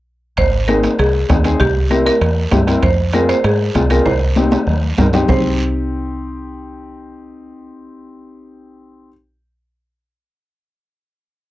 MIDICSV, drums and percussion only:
0, 0, Header, 1, 3, 480
1, 0, Start_track
1, 0, Key_signature, -3, "minor"
1, 0, Tempo, 306592
1, 586, Time_signature, 4, 2, 24, 8
1, 18017, End_track
2, 0, Start_track
2, 0, Title_t, "Two-headed folk drums"
2, 592, Note_on_c, 9, 37, 73
2, 593, Note_on_c, 9, 36, 73
2, 748, Note_off_c, 9, 37, 0
2, 749, Note_off_c, 9, 36, 0
2, 1079, Note_on_c, 9, 37, 78
2, 1236, Note_off_c, 9, 37, 0
2, 1322, Note_on_c, 9, 37, 69
2, 1479, Note_off_c, 9, 37, 0
2, 1559, Note_on_c, 9, 37, 77
2, 1716, Note_off_c, 9, 37, 0
2, 2032, Note_on_c, 9, 37, 91
2, 2033, Note_on_c, 9, 36, 94
2, 2189, Note_off_c, 9, 36, 0
2, 2189, Note_off_c, 9, 37, 0
2, 2272, Note_on_c, 9, 37, 66
2, 2428, Note_off_c, 9, 37, 0
2, 2504, Note_on_c, 9, 37, 77
2, 2509, Note_on_c, 9, 36, 81
2, 2660, Note_off_c, 9, 37, 0
2, 2665, Note_off_c, 9, 36, 0
2, 2987, Note_on_c, 9, 37, 72
2, 3144, Note_off_c, 9, 37, 0
2, 3222, Note_on_c, 9, 37, 73
2, 3378, Note_off_c, 9, 37, 0
2, 3468, Note_on_c, 9, 37, 77
2, 3625, Note_off_c, 9, 37, 0
2, 3946, Note_on_c, 9, 37, 84
2, 3949, Note_on_c, 9, 36, 85
2, 4103, Note_off_c, 9, 37, 0
2, 4106, Note_off_c, 9, 36, 0
2, 4183, Note_on_c, 9, 37, 81
2, 4340, Note_off_c, 9, 37, 0
2, 4429, Note_on_c, 9, 36, 73
2, 4429, Note_on_c, 9, 37, 69
2, 4585, Note_off_c, 9, 37, 0
2, 4586, Note_off_c, 9, 36, 0
2, 4907, Note_on_c, 9, 37, 81
2, 5064, Note_off_c, 9, 37, 0
2, 5148, Note_on_c, 9, 37, 75
2, 5304, Note_off_c, 9, 37, 0
2, 5391, Note_on_c, 9, 37, 87
2, 5547, Note_off_c, 9, 37, 0
2, 5876, Note_on_c, 9, 36, 84
2, 5880, Note_on_c, 9, 37, 87
2, 6033, Note_off_c, 9, 36, 0
2, 6037, Note_off_c, 9, 37, 0
2, 6118, Note_on_c, 9, 37, 76
2, 6275, Note_off_c, 9, 37, 0
2, 6357, Note_on_c, 9, 36, 81
2, 6358, Note_on_c, 9, 37, 86
2, 6514, Note_off_c, 9, 36, 0
2, 6515, Note_off_c, 9, 37, 0
2, 6843, Note_on_c, 9, 37, 76
2, 6999, Note_off_c, 9, 37, 0
2, 7083, Note_on_c, 9, 37, 78
2, 7240, Note_off_c, 9, 37, 0
2, 7320, Note_on_c, 9, 37, 78
2, 7477, Note_off_c, 9, 37, 0
2, 7803, Note_on_c, 9, 36, 85
2, 7805, Note_on_c, 9, 37, 92
2, 7960, Note_off_c, 9, 36, 0
2, 7962, Note_off_c, 9, 37, 0
2, 8044, Note_on_c, 9, 37, 71
2, 8201, Note_off_c, 9, 37, 0
2, 8283, Note_on_c, 9, 36, 97
2, 8440, Note_off_c, 9, 36, 0
2, 18017, End_track
3, 0, Start_track
3, 0, Title_t, "Drums"
3, 579, Note_on_c, 9, 74, 71
3, 581, Note_on_c, 9, 65, 71
3, 735, Note_off_c, 9, 74, 0
3, 738, Note_off_c, 9, 65, 0
3, 1058, Note_on_c, 9, 73, 60
3, 1068, Note_on_c, 9, 65, 62
3, 1070, Note_on_c, 9, 63, 70
3, 1214, Note_off_c, 9, 73, 0
3, 1224, Note_off_c, 9, 65, 0
3, 1227, Note_off_c, 9, 63, 0
3, 1305, Note_on_c, 9, 73, 63
3, 1310, Note_on_c, 9, 63, 61
3, 1310, Note_on_c, 9, 65, 57
3, 1462, Note_off_c, 9, 73, 0
3, 1466, Note_off_c, 9, 63, 0
3, 1466, Note_off_c, 9, 65, 0
3, 1544, Note_on_c, 9, 74, 63
3, 1554, Note_on_c, 9, 65, 61
3, 1701, Note_off_c, 9, 74, 0
3, 1711, Note_off_c, 9, 65, 0
3, 2027, Note_on_c, 9, 73, 64
3, 2028, Note_on_c, 9, 65, 65
3, 2028, Note_on_c, 9, 66, 68
3, 2030, Note_on_c, 9, 63, 75
3, 2184, Note_off_c, 9, 65, 0
3, 2184, Note_off_c, 9, 66, 0
3, 2184, Note_off_c, 9, 73, 0
3, 2187, Note_off_c, 9, 63, 0
3, 2260, Note_on_c, 9, 65, 63
3, 2265, Note_on_c, 9, 73, 66
3, 2416, Note_off_c, 9, 65, 0
3, 2421, Note_off_c, 9, 73, 0
3, 2507, Note_on_c, 9, 74, 65
3, 2510, Note_on_c, 9, 65, 74
3, 2664, Note_off_c, 9, 74, 0
3, 2666, Note_off_c, 9, 65, 0
3, 2975, Note_on_c, 9, 63, 76
3, 2988, Note_on_c, 9, 73, 65
3, 2991, Note_on_c, 9, 65, 58
3, 3132, Note_off_c, 9, 63, 0
3, 3144, Note_off_c, 9, 73, 0
3, 3148, Note_off_c, 9, 65, 0
3, 3226, Note_on_c, 9, 63, 59
3, 3232, Note_on_c, 9, 73, 68
3, 3233, Note_on_c, 9, 65, 59
3, 3383, Note_off_c, 9, 63, 0
3, 3389, Note_off_c, 9, 73, 0
3, 3390, Note_off_c, 9, 65, 0
3, 3467, Note_on_c, 9, 65, 64
3, 3474, Note_on_c, 9, 74, 65
3, 3623, Note_off_c, 9, 65, 0
3, 3630, Note_off_c, 9, 74, 0
3, 3937, Note_on_c, 9, 65, 70
3, 3937, Note_on_c, 9, 66, 71
3, 3942, Note_on_c, 9, 63, 78
3, 3950, Note_on_c, 9, 73, 71
3, 4094, Note_off_c, 9, 65, 0
3, 4094, Note_off_c, 9, 66, 0
3, 4098, Note_off_c, 9, 63, 0
3, 4106, Note_off_c, 9, 73, 0
3, 4191, Note_on_c, 9, 65, 64
3, 4197, Note_on_c, 9, 73, 73
3, 4348, Note_off_c, 9, 65, 0
3, 4353, Note_off_c, 9, 73, 0
3, 4424, Note_on_c, 9, 65, 73
3, 4437, Note_on_c, 9, 74, 68
3, 4581, Note_off_c, 9, 65, 0
3, 4593, Note_off_c, 9, 74, 0
3, 4900, Note_on_c, 9, 65, 64
3, 4911, Note_on_c, 9, 63, 82
3, 4911, Note_on_c, 9, 73, 61
3, 5057, Note_off_c, 9, 65, 0
3, 5068, Note_off_c, 9, 63, 0
3, 5068, Note_off_c, 9, 73, 0
3, 5153, Note_on_c, 9, 65, 67
3, 5154, Note_on_c, 9, 73, 70
3, 5309, Note_off_c, 9, 65, 0
3, 5311, Note_off_c, 9, 73, 0
3, 5389, Note_on_c, 9, 65, 67
3, 5396, Note_on_c, 9, 74, 67
3, 5546, Note_off_c, 9, 65, 0
3, 5553, Note_off_c, 9, 74, 0
3, 5864, Note_on_c, 9, 73, 63
3, 5871, Note_on_c, 9, 63, 76
3, 5871, Note_on_c, 9, 65, 60
3, 6021, Note_off_c, 9, 73, 0
3, 6028, Note_off_c, 9, 63, 0
3, 6028, Note_off_c, 9, 65, 0
3, 6108, Note_on_c, 9, 65, 64
3, 6111, Note_on_c, 9, 73, 75
3, 6264, Note_off_c, 9, 65, 0
3, 6268, Note_off_c, 9, 73, 0
3, 6350, Note_on_c, 9, 74, 68
3, 6352, Note_on_c, 9, 65, 71
3, 6507, Note_off_c, 9, 74, 0
3, 6508, Note_off_c, 9, 65, 0
3, 6822, Note_on_c, 9, 73, 63
3, 6829, Note_on_c, 9, 63, 97
3, 6979, Note_off_c, 9, 73, 0
3, 6986, Note_off_c, 9, 63, 0
3, 7059, Note_on_c, 9, 63, 85
3, 7069, Note_on_c, 9, 73, 69
3, 7075, Note_on_c, 9, 66, 85
3, 7216, Note_off_c, 9, 63, 0
3, 7225, Note_off_c, 9, 73, 0
3, 7232, Note_off_c, 9, 66, 0
3, 7308, Note_on_c, 9, 64, 72
3, 7309, Note_on_c, 9, 74, 67
3, 7465, Note_off_c, 9, 64, 0
3, 7465, Note_off_c, 9, 74, 0
3, 7786, Note_on_c, 9, 73, 69
3, 7790, Note_on_c, 9, 64, 91
3, 7800, Note_on_c, 9, 66, 75
3, 7942, Note_off_c, 9, 73, 0
3, 7946, Note_off_c, 9, 64, 0
3, 7957, Note_off_c, 9, 66, 0
3, 8030, Note_on_c, 9, 73, 72
3, 8034, Note_on_c, 9, 64, 83
3, 8040, Note_on_c, 9, 66, 86
3, 8187, Note_off_c, 9, 73, 0
3, 8190, Note_off_c, 9, 64, 0
3, 8196, Note_off_c, 9, 66, 0
3, 8268, Note_on_c, 9, 64, 95
3, 8272, Note_on_c, 9, 74, 96
3, 8281, Note_on_c, 9, 66, 94
3, 8424, Note_off_c, 9, 64, 0
3, 8429, Note_off_c, 9, 74, 0
3, 8437, Note_off_c, 9, 66, 0
3, 18017, End_track
0, 0, End_of_file